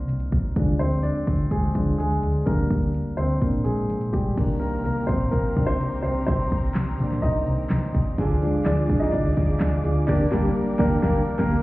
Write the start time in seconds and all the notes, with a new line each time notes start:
Already playing: D#3 A#3 C4 D4 A#4 C5
0.08 C2, closed hi-hat
0.20 closed hi-hat
0.32 C2, kick, closed hi-hat
0.56 D2 F3 G#3 D4, kick, closed hi-hat
0.79 D2 C4 C5, closed hi-hat
0.93 closed hi-hat
1.03 D4 D5, closed hi-hat
1.27 D2, kick, closed hi-hat
1.51 D2 G#3 G#4, kick, closed hi-hat
1.75 D2 F3 G#3 D4, kick, closed hi-hat
1.98 D2 G#3 G#4, closed hi-hat
2.11 closed hi-hat
2.23 D2, closed hi-hat
2.46 D2 G3 A#3 D4 A#4, kick, closed hi-hat
2.71 D2, kick, closed hi-hat
2.83 closed hi-hat
2.94 closed hi-hat
3.17 D2 C4 C5, closed hi-hat
3.41 A#1 A#3 C4 D4, kick, closed hi-hat
3.64 A#1 G#3 G#4, closed hi-hat
3.90 A#1, closed hi-hat
4.01 closed hi-hat
4.13 A#1 G3 G4, kick, closed hi-hat
4.37 C2 D#3 A#3 D4 G4 C5 G5 A#5, kick, closed hi-hat, crash
4.60 A#3 A#4, closed hi-hat
4.84 C2 A#3 A#4, closed hi-hat
5.07 A#1 C4 C5, kick, closed hi-hat
5.31 C2 A#3 A#4, kick, closed hi-hat
5.56 C2 D#3 A#3 D4, kick, closed hi-hat
5.67 C4 C5
5.81 C2, closed hi-hat
6.02 C2 C4 C5, closed hi-hat
6.27 C2 C4 C5, kick, closed hi-hat
6.52 kick, closed hi-hat
6.75 C2, snare, clap, closed hi-hat
6.99 A#1 D#3 A#3 D4, closed hi-hat
7.12 snare
7.22 C2 D#4 D#5, kick, closed hi-hat
7.47 C2, closed hi-hat
7.70 C2, snare, clap, closed hi-hat
7.95 C2, kick, closed hi-hat
8.18 D2 D3 F3 D4 F4 G#4 D5 F5 D6, kick, closed hi-hat
8.42 F3 G#3 D4, closed hi-hat
8.65 D2 F3 D4 F4 G#4 D5, snare, clap, closed hi-hat
8.89 C2 D4 F4 G#4, kick, closed hi-hat
9.00 D#4 D#5, snare
9.12 D2 D4 D5, kick, closed hi-hat
9.37 D2, kick, closed hi-hat
9.60 D2 F3 D4 F4 G#4, snare, clap, closed hi-hat
9.84 D2 D4 F4 G#4, closed hi-hat
10.07 D2 D3 G3 A#3 D4 G4 A#4 D5 G5, kick, snare, crash
10.31 D2 D3 G3 A#3 D4 G4, kick, snare
10.78 D2 A#3 D4 G4 A#4, kick, snare
11.02 D2 A#3 D4 G4 A#4, kick, snare
11.38 D2 G3 A#3 D4 G4 A#4, kick, snare, crash